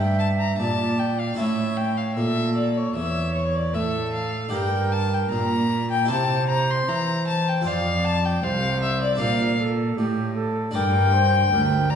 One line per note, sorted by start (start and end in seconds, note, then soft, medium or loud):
0.00 0.56 G2 medium
0.00 0.59 G2 medium
0.00 1.32 D4 soft
0.00 1.33 G4 soft
0.00 1.33 A#4 medium
0.00 0.61 E5 medium
0.00 0.19 G5 medium
0.19 0.27 A5 medium
0.40 0.58 A#5 medium
0.58 1.36 A#2 medium
0.58 1.34 A#2 medium
0.58 1.37 D5 medium
0.58 1.00 A5 medium
0.99 1.21 G5 medium
1.19 1.37 F5 medium
1.34 4.47 C#4 soft
1.34 4.48 E4 soft
1.34 4.48 A4 soft
1.34 2.18 C#5 medium
1.34 1.78 E5 medium
1.38 2.17 A2 medium
1.38 2.13 A2 medium
1.77 1.99 G5 medium
1.97 2.14 F5 medium
2.15 2.95 A#2 medium
2.15 2.92 A#2 soft
2.15 2.97 A4 medium
2.15 2.55 E5 medium
2.55 2.79 D5 medium
2.77 2.95 C#5 medium
2.95 3.75 E2 medium
2.95 3.70 E2 medium
2.95 3.76 C#5 medium
2.95 3.34 E5 medium
3.34 3.57 C#5 medium
3.55 3.75 D5 medium
3.74 4.52 A2 medium
3.74 4.49 A2 medium
3.74 4.51 A4 medium
3.74 4.13 E5 medium
4.13 4.51 F5 medium
4.49 6.04 D4 soft
4.49 6.04 G4 medium
4.49 6.05 A#4 medium
4.49 5.79 A#4 medium
4.49 4.94 G5 medium
4.53 5.30 G2 medium
4.53 5.28 G2 medium
4.92 5.15 A5 medium
5.14 5.30 G5 medium
5.31 6.11 A#2 medium
5.31 6.06 A#2 medium
5.31 5.89 A#5 medium
5.91 6.10 G5 loud
6.05 7.59 E4 medium
6.05 7.60 G4 medium
6.05 7.61 C5 medium
6.10 6.87 C3 medium
6.10 6.84 C3 medium
6.10 7.62 C5 medium
6.10 6.48 A5 loud
6.49 6.72 A#5 loud
6.70 6.90 C6 loud
6.88 7.64 E3 medium
6.88 7.62 E3 medium
6.88 7.27 A#5 loud
7.28 7.50 A5 loud
7.49 7.69 G5 medium
7.61 9.14 F4 medium
7.61 9.15 A4 medium
7.61 9.15 C5 medium
7.61 8.41 D5 medium
7.66 8.39 F2 medium
7.66 8.42 F2 medium
7.66 8.06 F5 loud
8.05 8.26 A5 loud
8.25 8.45 G5 medium
8.42 9.16 C2 medium
8.42 9.19 C2 medium
8.42 9.18 C5 medium
8.42 8.82 F5 loud
8.82 9.01 E5 medium
9.02 9.20 D5 medium
9.16 10.68 D4 medium
9.16 10.69 A4 medium
9.16 9.61 A#4 medium
9.16 10.70 D5 soft
9.20 9.93 A#2 medium
9.20 9.96 A#2 medium
9.20 9.58 F5 loud
9.59 9.99 A4 medium
9.97 10.73 A2 medium
9.97 10.71 A2 medium
9.97 10.35 G4 medium
10.35 10.73 A4 medium
10.71 11.51 G2 medium
10.71 11.95 D4 medium
10.71 11.95 A#4 medium
10.71 11.14 A#4 medium
10.71 11.95 D5 medium
10.71 11.92 G5 loud
10.76 11.49 G2 medium
11.13 11.52 C5 medium
11.52 11.95 D2 medium
11.52 11.92 A#4 medium
11.90 11.95 D5 medium
11.90 11.95 A#5 loud